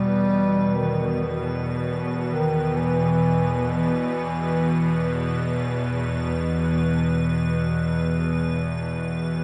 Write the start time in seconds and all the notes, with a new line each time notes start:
Already playing: E2 B2 G3 B4
0.75 D#3
2.28 D#3
2.77 E3
3.77 E3